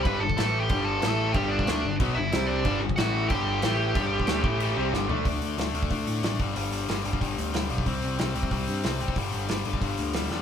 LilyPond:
<<
  \new Staff \with { instrumentName = "Lead electric guitar" } { \time 4/4 \key d \mixolydian \tempo 4 = 184 <b' b''>8 <a' a''>4~ <a' a''>16 <g' g''>8. <a' a''>4. | <g' g''>8 <d' d''>4. r8 <e' e''>4 <d' d''>8~ | <d' d''>8 r8 <fis' fis''>4 <g' g''>2~ | <g' g''>2. r4 |
r1 | r1 | r1 | r1 | }
  \new Staff \with { instrumentName = "Distorted electric guitar" } { \clef bass \time 4/4 \key d \mixolydian <g, d g>8 <g, d>8 <a, e a>4 <g, d g>4 <a, e a>4 | <g, d g>4 <d a d'>8 <g, d>8 <b, fis b>8 <g, d>8 <c g c'>4 | <g, d g>8 <g, d>8 <a, e a>4 <g, d g>4 <a, e a>4 | <g, d g>4 <d a d'>8 <a, e a>4 <c g c'>8 <g, d g>8 <d a d'>8 |
<d a d'>4 <d a d'>8 <d a d'>8 <d a d'>4 <d a d'>8 <g, d g>8 | <g, d g>4 <g, d g>8 <g, d g>8 <g, d g>4 <g, d g>8 <g, d g>8 | <c g c'>4 <c g c'>8 <c g c'>8 <c g c'>4 <c g c'>8 <c g c'>8 | <g, d g>4 <g, d g>8 <g, d g>8 <g, d g>4 <g, d g>8 <g, d g>8 | }
  \new Staff \with { instrumentName = "Overdriven electric guitar" } { \clef bass \time 4/4 \key d \mixolydian <g, d g>8 <g, d>8 <a, e a>4 <g, d g>4 <a, e a>4 | <g, d g>4 <d a d'>8 <g, d>8 <b, fis b>8 <g, d>8 <c g c'>4 | <g, d g>8 <g, d>8 <a, e a>4 <g, d g>4 <a, e a>4 | <g, d g>4 <d a d'>8 <a, e a>4 <c g c'>8 <g, d g>8 <d a d'>8 |
r1 | r1 | r1 | r1 | }
  \new Staff \with { instrumentName = "Picked electric bass" } { \clef bass \time 4/4 \key d \mixolydian g,,8 g,,8 a,,4 g,,4 a,,4 | g,,4 d,8 g,,8 b,,8 g,,8 c,4 | g,,8 g,,8 a,,4 g,,4 a,,4 | g,,4 d,8 a,,4 c,8 g,,8 d,8 |
d,8 d,8 d,8 d,8 d,8 a,8 a,,8 g,,8 | g,,8 g,,8 g,,8 g,,8 g,,8 d,8 d,8 b,,8 | c,8 c,8 c,8 c,8 c,8 g,8 c,8 fis,,8 | g,,8 g,,8 g,,8 g,,8 g,,8 d,8 d,8 e,8 | }
  \new DrumStaff \with { instrumentName = "Drums" } \drummode { \time 4/4 <cymc bd>8. bd16 <cymc sn>4 <cymc bd>4 <cymc sn>4 | <cymc bd>8. bd16 <cymc sn>4 <cymc bd>4 <cymc sn>4 | <cymc bd>8. bd16 <cymc sn>4 <cymc bd>4 <cymc sn>4 | <cymc bd>8. bd16 <cymc sn>8 bd8 cymc4 sn8 tomfh8 |
<hho bd>8 hho8 <hho sn>8 hho16 bd16 <hho bd>8 hho8 <hho sn>8 <hho bd>8 | hho8 hho8 <hho sn>8 hho16 bd16 <hho bd>8 hho8 <hho sn>8 hho16 bd16 | <hho bd>8 hho8 <hho sn>8 hho16 bd16 <hho bd>8 hho8 <hho sn>8 hho16 bd16 | <hho bd>8 hho8 <hho sn>8 hho16 bd16 <hho bd>8 hho8 <hho sn>8 sn8 | }
>>